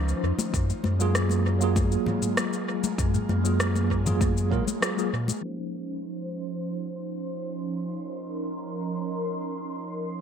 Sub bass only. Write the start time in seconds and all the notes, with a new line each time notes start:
Already playing: C#2
0.23 F2
0.54 F#2
0.84 F#2
2.99 F#2
3.29 F#2
4.52 A#2
5.13 A#2